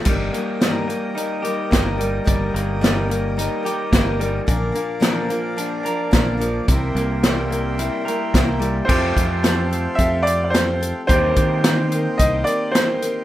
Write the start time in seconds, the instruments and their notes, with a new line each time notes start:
0.04 fingered electric bass G1, steel-string acoustic guitar G2 D#3 G3 A#3 D#4 A#4, accordion A#4 D#5 G5 D#6, kick, closed hi-hat, crash
0.34 steel-string acoustic guitar G3 A#3 D#4 A#4, closed hi-hat
0.61 steel-string acoustic guitar G2 D#3 G3 A#3 D#4 A#4, snare, closed hi-hat
0.89 steel-string acoustic guitar G3 A#3 D#4 A#4, closed hi-hat
1.15 steel-string acoustic guitar G3 A#3 D#4 A#4, closed hi-hat
1.42 steel-string acoustic guitar G3 A#3 D#4 A#4, clean electric guitar G4, closed hi-hat
1.71 fingered electric bass G1, steel-string acoustic guitar G2 D#3 G3 A#3 D#4 A#4, kick, snare, closed hi-hat
1.98 steel-string acoustic guitar G3 A#3 D#4 A#4, closed hi-hat
2.24 fingered electric bass G1, steel-string acoustic guitar G2 D#3 G3 A#3 D#4 A#4, kick, closed hi-hat
2.54 fingered electric bass G1, steel-string acoustic guitar G3 A#3 D#4 A#4, closed hi-hat
2.81 steel-string acoustic guitar G2 D#3 G3 A#3 D#4 A#4, snare, closed hi-hat
3.08 steel-string acoustic guitar G3 A#3 D#4 A#4, closed hi-hat
3.37 steel-string acoustic guitar G3 A#3 D#4 A#4, closed hi-hat
3.63 steel-string acoustic guitar G3 A#3 D#4 A#4, clean electric guitar G4, closed hi-hat
3.92 fingered electric bass G1, steel-string acoustic guitar G2 D#3 G3 A#3 D#4 A#4, kick, snare, closed hi-hat
4.19 steel-string acoustic guitar G3 A#3 D#4 A#4, closed hi-hat
4.47 fingered electric bass A#1, steel-string acoustic guitar A#2 D3 F3 A#3 D4 A#4, accordion D5 F5 D6, kick, closed hi-hat
4.72 steel-string acoustic guitar F3 A#3 D4 A#4, closed hi-hat
5.00 steel-string acoustic guitar A#2 D3 F3 A#3 D4 A#4, snare, closed hi-hat
5.28 steel-string acoustic guitar F3 A#3 D4 A#4, closed hi-hat
5.57 steel-string acoustic guitar F3 A#3 D4 A#4, closed hi-hat
5.83 steel-string acoustic guitar F3 A#3 D4 A#4, closed hi-hat
6.11 fingered electric bass A#1, steel-string acoustic guitar A#2 D3 F3 A#3 D4 A#4, kick, snare, closed hi-hat
6.37 steel-string acoustic guitar F3 A#3 D4 A#4, closed hi-hat
6.68 fingered electric bass C2, steel-string acoustic guitar C3 G3 A#3 E4 A#4, accordion E5 C6, kick, closed hi-hat
6.72 accordion G5
6.95 fingered electric bass C2, steel-string acoustic guitar A#3 E4 A#4, closed hi-hat
7.23 steel-string acoustic guitar C3 G3 A#3 E4 A#4, snare, closed hi-hat
7.50 steel-string acoustic guitar A#3 E4 A#4, closed hi-hat
7.78 steel-string acoustic guitar G3 A#3 E4 A#4, closed hi-hat
8.06 steel-string acoustic guitar A#3 E4 A#4, closed hi-hat
8.34 fingered electric bass C2, steel-string acoustic guitar C3 G3 A#3 E4 A#4, kick, snare, closed hi-hat
8.59 clean electric guitar G3, steel-string acoustic guitar A#3 E4 A#4, closed hi-hat
8.85 fingered electric bass F2, steel-string acoustic guitar F3 G4, clean electric guitar A3, accordion A4 F5 G5 C6, grand piano C5
8.89 steel-string acoustic guitar C4 A4, kick, crash
9.17 fingered electric bass F2, steel-string acoustic guitar C4 G4 A4, kick, closed hi-hat
9.42 steel-string acoustic guitar F3 C4 G4 A4, snare, closed hi-hat
9.71 steel-string acoustic guitar C4 G4 A4, closed hi-hat
9.95 fingered electric bass F2, steel-string acoustic guitar F3 C4, grand piano E5, kick, closed hi-hat
10.00 steel-string acoustic guitar G4 A4
10.23 steel-string acoustic guitar A4, grand piano D5
10.27 steel-string acoustic guitar C4 G4, closed hi-hat
10.44 grand piano D5
10.50 steel-string acoustic guitar F3 C4 G4, grand piano C5
10.54 steel-string acoustic guitar A4, snare, closed hi-hat
10.81 steel-string acoustic guitar C4 G4 A4, closed hi-hat
11.07 fingered electric bass D#2, steel-string acoustic guitar D#3 G3 C4 G4 A#4, clean electric guitar A#3, accordion A#4 D#5, grand piano C5, kick, closed hi-hat
11.36 fingered electric bass D#3, steel-string acoustic guitar C4 G4 A#4, kick, closed hi-hat
11.64 steel-string acoustic guitar G3 C4 G4 A#4, snare, closed hi-hat
11.92 steel-string acoustic guitar G4 A#4, closed hi-hat
11.96 steel-string acoustic guitar C4
12.18 fingered electric bass C2, steel-string acoustic guitar D#3 G3 C4, grand piano D#5, kick, closed hi-hat
12.22 steel-string acoustic guitar G4 A#4
12.44 steel-string acoustic guitar G4 A#4, grand piano D5, closed hi-hat
12.48 steel-string acoustic guitar C4
12.72 steel-string acoustic guitar G3 C4, grand piano C5, snare, closed hi-hat
12.76 steel-string acoustic guitar G4 A#4
13.02 steel-string acoustic guitar C4 G4 A#4, closed hi-hat